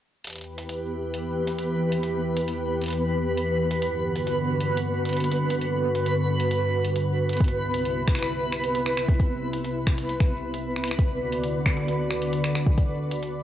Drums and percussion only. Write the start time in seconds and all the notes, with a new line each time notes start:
0.24 closed hi-hat
0.27 closed hi-hat
0.30 closed hi-hat
0.32 closed hi-hat
0.35 closed hi-hat
0.38 closed hi-hat
0.41 closed hi-hat
0.44 closed hi-hat
0.58 closed hi-hat
0.69 closed hi-hat
1.14 closed hi-hat
1.47 closed hi-hat
1.58 closed hi-hat
1.92 closed hi-hat
2.03 closed hi-hat
2.37 closed hi-hat
2.48 closed hi-hat
2.82 closed hi-hat
2.84 closed hi-hat
2.86 closed hi-hat
2.88 closed hi-hat
2.90 closed hi-hat
2.93 closed hi-hat
3.38 closed hi-hat
3.71 closed hi-hat
3.82 closed hi-hat
4.16 closed hi-hat
4.27 closed hi-hat
4.61 closed hi-hat
4.77 closed hi-hat
5.05 closed hi-hat
5.09 closed hi-hat
5.13 closed hi-hat
5.17 closed hi-hat
5.20 closed hi-hat
5.24 closed hi-hat
5.32 closed hi-hat
5.50 closed hi-hat
5.61 closed hi-hat
5.95 closed hi-hat
6.06 closed hi-hat
6.40 closed hi-hat
6.51 closed hi-hat
6.85 closed hi-hat
6.96 closed hi-hat
7.29 closed hi-hat
7.33 closed hi-hat
7.37 closed hi-hat
7.41 kick, closed hi-hat
7.44 closed hi-hat
7.48 closed hi-hat
7.74 closed hi-hat
7.85 closed hi-hat
8.08 finger snap, kick
8.15 finger snap, closed hi-hat
8.23 finger snap
8.52 finger snap
8.64 closed hi-hat
8.75 closed hi-hat
8.86 finger snap
8.97 finger snap
9.08 kick, closed hi-hat
9.20 kick, closed hi-hat
9.53 closed hi-hat
9.64 closed hi-hat
9.87 finger snap, kick
9.98 closed hi-hat
10.09 closed hi-hat
10.20 finger snap, kick
10.54 closed hi-hat
10.76 finger snap
10.84 finger snap, closed hi-hat
10.91 finger snap
10.99 kick, closed hi-hat
11.32 closed hi-hat
11.44 closed hi-hat
11.66 finger snap, kick
11.77 closed hi-hat
11.88 closed hi-hat
12.11 finger snap
12.22 closed hi-hat
12.33 closed hi-hat
12.44 finger snap
12.55 finger snap
12.67 kick
12.78 kick, closed hi-hat
13.11 closed hi-hat
13.23 closed hi-hat